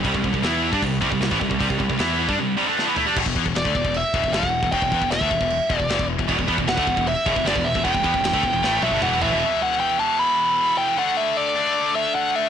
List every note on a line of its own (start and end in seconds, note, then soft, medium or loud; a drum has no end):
0.03 0.14 C2 loud
0.03 0.12 C3 loud
0.03 0.13 G3 loud
0.03 kick loud
0.03 open hi-hat medium
0.14 0.24 C2 medium
0.14 0.22 C3 medium
0.14 0.23 G3 medium
0.14 kick medium
0.23 0.33 C2 medium
0.23 0.32 C3 medium
0.23 0.32 G3 medium
0.23 kick medium
0.33 0.43 C2 medium
0.33 0.42 C3 medium
0.33 0.42 G3 medium
0.33 kick medium
0.43 0.71 E2 loud
0.43 0.72 E3 medium
0.43 0.71 B3 medium
0.43 0.71 E4 loud
0.43 snare loud
0.43 open hi-hat medium
0.71 0.82 G2 loud
0.71 0.80 G3 medium
0.71 0.81 D4 medium
0.71 kick loud
0.82 1.01 C2 medium
0.82 0.98 C3 medium
0.82 0.98 G3 medium
0.82 kick medium
0.82 open hi-hat medium
1.01 1.11 C2 medium
1.01 1.09 C3 medium
1.01 1.10 G3 medium
1.01 kick loud
1.11 1.19 C2 medium
1.11 1.20 C3 medium
1.11 1.20 G3 medium
1.11 kick medium
1.20 1.30 C2 medium
1.20 1.31 C3 medium
1.20 1.31 G3 medium
1.20 snare loud
1.20 open hi-hat medium
1.31 1.40 A1 medium
1.31 1.40 A2 medium
1.31 1.40 E3 loud
1.31 kick loud
1.40 1.50 C2 medium
1.40 1.48 C3 medium
1.40 1.49 G3 medium
1.40 kick medium
1.49 1.60 C2 medium
1.49 1.58 C3 medium
1.49 1.59 G3 medium
1.49 kick medium
1.59 1.69 C2 loud
1.59 1.68 C3 loud
1.59 1.69 G3 loud
1.59 kick medium
1.59 open hi-hat medium
1.69 1.79 C2 medium
1.69 1.78 C3 medium
1.69 1.79 G3 medium
1.69 kick medium
1.79 1.89 C2 medium
1.79 1.88 C3 medium
1.79 1.89 G3 medium
1.79 kick medium
1.89 1.99 C2 medium
1.89 1.98 C3 medium
1.89 1.99 G3 medium
1.89 kick medium
1.99 2.27 E2 medium
1.99 2.28 E3 medium
1.99 2.28 B3 medium
1.99 2.28 E4 loud
1.99 snare loud
1.99 open hi-hat medium
2.29 2.38 G2 loud
2.29 2.37 G3 medium
2.29 2.38 D4 medium
2.29 kick loud
2.38 2.54 C3 medium
2.38 2.54 G3 medium
2.57 2.67 C3 medium
2.57 2.67 G3 loud
2.67 2.86 D3 medium
2.67 2.87 A3 medium
2.67 2.87 D4 medium
2.79 snare medium
2.87 2.96 E3 medium
2.87 2.96 B3 loud
2.97 3.06 A3 medium
2.97 3.07 E4 medium
2.97 floor tom medium
3.07 3.16 G3 medium
3.07 3.16 D4 medium
3.16 3.26 E1 medium
3.16 3.25 E2 medium
3.16 3.25 B2 loud
3.16 kick loud
3.16 crash loud
3.16 crash medium
3.26 3.35 E1 medium
3.26 3.36 E2 medium
3.26 3.36 B2 medium
3.26 kick medium
3.36 3.45 E2 loud
3.36 3.45 E3 medium
3.36 3.45 B3 loud
3.36 kick medium
3.46 3.55 E1 medium
3.46 3.54 E2 medium
3.46 3.55 B2 medium
3.46 kick medium
3.55 3.64 E1 medium
3.55 3.65 E2 medium
3.55 3.64 B2 medium
3.55 3.97 D5 medium
3.55 snare loud
3.55 crash medium
3.64 3.74 D2 medium
3.64 3.74 D3 medium
3.64 3.74 A3 medium
3.64 kick loud
3.75 3.84 E1 medium
3.75 3.84 E2 medium
3.75 3.84 B2 medium
3.75 kick medium
3.84 4.03 E1 medium
3.84 4.01 E2 medium
3.84 4.01 B2 medium
3.84 kick medium
3.94 4.32 E5 medium
3.94 crash medium
4.14 4.23 E1 medium
4.14 4.23 E2 loud
4.14 4.23 B2 loud
4.14 kick loud
4.24 4.32 E1 medium
4.24 4.34 E2 medium
4.24 4.34 B2 medium
4.24 kick medium
4.32 4.42 G1 medium
4.32 4.43 G2 medium
4.32 4.43 D3 loud
4.32 4.72 F#5 loud
4.32 snare loud
4.32 crash medium
4.43 4.62 E1 medium
4.43 4.59 E2 medium
4.43 4.60 B2 medium
4.43 kick loud
4.63 4.72 E1 medium
4.63 4.72 E2 medium
4.63 4.73 B2 medium
4.63 kick loud
4.72 4.81 E1 loud
4.72 4.82 E2 loud
4.72 4.82 B2 loud
4.72 5.11 G5 loud
4.72 kick medium
4.72 crash medium
4.82 4.91 E1 medium
4.82 4.92 E2 medium
4.82 4.93 B2 medium
4.82 kick medium
4.92 5.01 E2 loud
4.92 5.02 E3 medium
4.92 5.02 B3 loud
4.92 kick medium
5.02 5.11 E1 medium
5.02 5.11 E2 medium
5.02 5.12 B2 medium
5.02 kick medium
5.11 5.21 E1 medium
5.11 5.22 E2 medium
5.11 5.22 B2 medium
5.11 5.78 E5 medium
5.11 snare loud
5.11 crash medium
5.21 5.30 D2 loud
5.21 5.31 D3 medium
5.21 5.31 A3 loud
5.21 kick loud
5.31 5.40 E1 medium
5.31 5.41 E2 medium
5.31 5.41 B2 medium
5.31 kick medium
5.41 5.59 E1 medium
5.41 5.57 E2 medium
5.41 5.57 B2 medium
5.41 kick medium
5.50 crash medium
5.70 5.79 E1 loud
5.70 5.78 E2 loud
5.70 5.79 B2 loud
5.70 kick loud
5.78 5.88 E1 medium
5.78 5.89 E2 medium
5.78 5.90 B2 medium
5.78 6.05 D5 medium
5.78 kick medium
5.89 5.98 G1 medium
5.89 5.99 G2 medium
5.89 5.99 D3 loud
5.89 snare loud
5.89 crash medium
5.99 6.17 E1 medium
5.99 6.15 E2 medium
5.99 6.15 B2 medium
5.99 kick medium
6.19 6.28 E1 medium
6.19 6.27 E2 medium
6.19 6.28 B2 medium
6.19 kick loud
6.29 6.38 E1 loud
6.29 6.37 E2 loud
6.29 6.37 B2 loud
6.29 kick loud
6.29 crash medium
6.38 6.48 E1 medium
6.38 6.48 E2 medium
6.38 6.47 B2 medium
6.38 kick medium
6.48 6.57 E2 loud
6.48 6.57 E3 loud
6.48 6.58 B3 loud
6.48 kick medium
6.58 6.67 E1 medium
6.58 6.66 E2 medium
6.58 6.67 B2 medium
6.58 kick medium
6.67 6.77 E1 medium
6.67 6.77 E2 medium
6.67 6.77 B2 medium
6.67 7.04 F#5 loud
6.67 snare loud
6.67 crash medium
6.77 6.86 D2 loud
6.77 6.87 D3 medium
6.77 6.87 A3 loud
6.77 kick loud
6.87 6.96 E1 medium
6.87 6.96 E2 medium
6.87 6.97 B2 medium
6.87 kick medium
6.97 7.15 E1 medium
6.97 7.13 E2 medium
6.97 7.13 B2 medium
6.97 kick medium
7.07 7.44 E5 medium
7.07 crash medium
7.26 7.35 E1 loud
7.26 7.35 E2 loud
7.26 7.35 B2 loud
7.26 kick loud
7.36 7.44 E1 medium
7.36 7.45 E2 medium
7.36 7.46 B2 medium
7.36 kick medium
7.45 7.54 G1 medium
7.45 7.55 G2 loud
7.45 7.55 D3 loud
7.45 7.66 D5 medium
7.45 snare loud
7.45 crash medium
7.56 7.74 E1 medium
7.56 7.71 E2 medium
7.56 7.71 B2 medium
7.56 kick medium
7.65 7.83 E5 medium
7.74 7.84 E1 medium
7.74 7.83 E2 medium
7.74 7.83 B2 medium
7.74 kick loud
7.84 7.94 E1 loud
7.84 7.93 E2 loud
7.84 7.94 B2 loud
7.84 8.98 G5 loud
7.84 kick loud
7.84 crash medium
7.94 8.04 E1 medium
7.94 8.04 E2 medium
7.94 8.03 B2 medium
7.94 kick medium
8.03 8.13 E2 loud
8.03 8.13 E3 medium
8.03 8.13 B3 loud
8.03 kick medium
8.14 8.23 E1 medium
8.14 8.23 E2 medium
8.14 8.23 B2 medium
8.14 kick medium
8.24 8.33 E1 medium
8.24 8.34 E2 medium
8.24 8.33 B2 medium
8.24 snare loud
8.24 crash medium
8.33 8.43 D2 medium
8.33 8.43 D3 medium
8.33 8.43 A3 loud
8.33 kick loud
8.43 8.52 E1 medium
8.43 8.52 E2 medium
8.43 8.53 B2 medium
8.43 kick medium
8.53 8.62 E1 medium
8.53 8.63 E2 medium
8.53 8.62 B2 medium
8.63 8.81 A1 medium
8.63 8.82 A2 medium
8.63 8.82 E3 loud
8.63 8.82 A3 loud
8.63 snare medium
8.81 8.91 B1 loud
8.81 8.91 B2 loud
8.81 8.92 F#3 loud
8.81 9.01 E5 medium
8.81 high tom medium
8.91 9.01 G1 loud
8.91 9.01 G2 medium
8.91 9.02 D3 medium
9.02 9.20 E1 loud
9.02 9.21 E2 medium
9.02 9.21 B2 loud
9.02 9.20 E3 medium
9.02 9.22 F#5 medium
9.02 mid tom medium
9.21 9.31 A1 medium
9.21 9.30 A2 medium
9.21 9.31 E3 medium
9.21 9.58 E5 loud
9.21 floor tom loud
9.30 9.40 E1 medium
9.30 9.38 E2 medium
9.30 9.39 B2 loud
9.39 9.98 E2 medium
9.39 9.98 B2 medium
9.39 9.98 E3 loud
9.62 9.79 F#5 loud
9.80 9.99 G5 loud
9.99 10.97 E2 medium
9.99 10.96 B2 medium
9.99 10.96 E3 loud
9.99 10.19 A5 loud
10.19 10.80 B5 loud
10.78 10.98 G5 loud
10.97 11.55 D3 loud
10.97 11.55 A3 loud
10.97 11.55 D4 loud
10.97 11.17 F#5 loud
11.17 11.37 E5 loud
11.37 11.95 D5 medium
11.55 12.49 D3 medium
11.55 12.49 A3 medium
11.55 12.49 D4 medium
11.96 12.15 E5 medium
12.15 12.36 F#5 loud
12.36 12.49 E5 loud